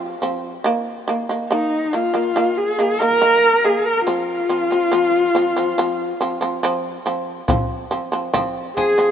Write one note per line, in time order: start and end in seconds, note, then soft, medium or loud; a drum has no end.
0.00 0.14 F3 loud
0.00 0.14 C4 loud
0.00 0.22 F4 medium
0.22 0.56 F3 medium
0.22 0.57 C4 medium
0.64 0.99 D#3 medium
0.64 1.00 A#3 loud
1.08 1.25 D#3 medium
1.08 1.26 A#3 medium
1.29 1.46 D#3 medium
1.29 1.47 A#3 medium
1.50 1.85 D#3 medium
1.50 1.85 A#3 loud
1.50 1.95 D#4 medium
1.93 2.10 D#3 medium
1.93 2.11 A#3 medium
1.93 2.59 F4 medium
2.14 2.31 D#3 medium
2.14 2.32 A#3 medium
2.36 2.70 D#3 medium
2.36 2.71 A#3 medium
2.58 3.01 G#4 medium
2.79 2.96 D#3 medium
2.79 2.97 A#3 medium
3.00 3.17 D#3 medium
3.00 3.18 A#3 medium
3.00 3.66 A#4 loud
3.22 3.56 D#3 medium
3.22 3.56 A#3 medium
3.64 3.99 D#3 medium
3.64 3.99 A#3 medium
3.64 3.87 G#4 medium
3.85 4.05 A#4 medium
4.05 4.41 F3 medium
4.05 4.42 C4 medium
4.05 6.58 F4 medium
4.49 4.67 F3 medium
4.49 4.67 C4 medium
4.71 4.88 F3 medium
4.71 4.89 C4 medium
4.92 5.26 F3 medium
4.92 5.27 C4 medium
5.35 5.52 F3 medium
5.35 5.53 C4 medium
5.56 5.74 F3 medium
5.56 5.74 C4 medium
5.78 6.12 F3 medium
5.78 6.13 C4 loud
6.21 6.38 F3 medium
6.21 6.38 C4 medium
6.41 6.59 F3 medium
6.41 6.59 C4 medium
6.63 6.97 F3 loud
6.63 6.98 C4 loud
7.06 7.40 F3 medium
7.06 7.41 C4 medium
7.48 7.83 F3 loud
7.48 7.83 C4 loud
7.48 frame drum medium
7.91 8.08 F3 medium
7.91 8.09 C4 medium
7.91 frame drum soft
8.12 8.29 F3 medium
8.12 8.30 C4 medium
8.34 8.68 F3 loud
8.34 8.68 C4 loud
8.34 frame drum medium
8.76 8.94 F3 medium
8.76 8.94 C4 medium
8.76 9.11 G#4 medium
8.76 frame drum soft
8.98 9.11 F3 medium
8.98 9.11 C4 medium